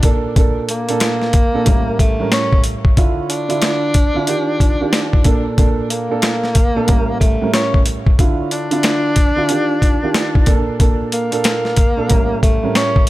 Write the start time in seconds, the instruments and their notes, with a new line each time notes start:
Already playing: tenor saxophone D4
0.03 upright piano A#2 A#3 D4 A4, kick, closed hi-hat
0.36 upright piano A#2 A#3 D4 A4, kick, closed hi-hat
0.69 tenor saxophone A#3, closed hi-hat
0.88 upright piano A#2 A#3 D4 A4, closed hi-hat
1.00 finger snap, snare, closed hi-hat
1.22 snare
1.33 kick, closed hi-hat
1.53 upright piano A#2 A#3 D4 A4
1.65 upright piano A2 G3 C#4 A#4, kick, closed hi-hat
1.99 tenor saxophone A3, kick, closed hi-hat
2.19 upright piano A2 G3 C#4 A#4
2.32 tenor saxophone C#4, finger snap, snare, closed hi-hat
2.53 kick
2.64 closed hi-hat
2.85 kick
2.96 upright piano D3 D4 E4 F4, kick, closed hi-hat
3.30 tenor saxophone D4, closed hi-hat
3.48 upright piano D3 D4 E4 F4, closed hi-hat
3.62 finger snap, snare, closed hi-hat
3.94 kick, closed hi-hat
4.14 upright piano D3 D4 E4 F4
4.27 upright piano D#3 D4 F4 G4, closed hi-hat
4.60 kick, closed hi-hat
4.80 upright piano D#3 D4 F4 G4
4.93 finger snap, snare, closed hi-hat
5.13 kick
5.24 upright piano A#2 A#3 D4 A4, kick, closed hi-hat
5.57 upright piano A#2 A#3 D4 A4, kick, closed hi-hat
5.90 tenor saxophone A#3, closed hi-hat
6.09 upright piano A#2 A#3 D4 A4
6.22 finger snap, snare, closed hi-hat
6.43 snare
6.55 kick, closed hi-hat
6.75 upright piano A#2 A#3 D4 A4
6.86 upright piano A2 G3 C#4 A#4, kick, closed hi-hat
7.19 tenor saxophone A3, kick, closed hi-hat
7.41 upright piano A2 G3 C#4 A#4
7.54 tenor saxophone C#4, finger snap, snare, closed hi-hat
7.74 kick
7.86 closed hi-hat
8.07 kick
8.18 upright piano D3 D4 E4 F4, kick, closed hi-hat
8.51 tenor saxophone D4, closed hi-hat
8.70 upright piano D3 D4 E4 F4, closed hi-hat
8.83 finger snap, snare, closed hi-hat
9.16 kick, closed hi-hat
9.36 upright piano D3 D4 E4 F4
9.49 upright piano D#3 D4 F4 G4, closed hi-hat
9.82 kick, closed hi-hat
10.03 upright piano D#3 D4 F4 G4
10.14 finger snap, snare, closed hi-hat
10.35 kick
10.46 upright piano A#2 A#3 D4 A4, kick, closed hi-hat
10.79 upright piano A#2 A#3 D4 A4, kick, closed hi-hat
11.12 tenor saxophone A#3, closed hi-hat
11.31 upright piano A#2 A#3 D4 A4, closed hi-hat
11.44 finger snap, snare, closed hi-hat
11.65 snare
11.76 kick, closed hi-hat
11.96 upright piano A#2 A#3 D4 A4
12.08 upright piano A2 G3 C#4 A#4, kick, closed hi-hat
12.43 tenor saxophone A3, kick, closed hi-hat
12.63 upright piano A2 G3 C#4 A#4
12.75 tenor saxophone C#4, finger snap, snare, closed hi-hat
12.96 kick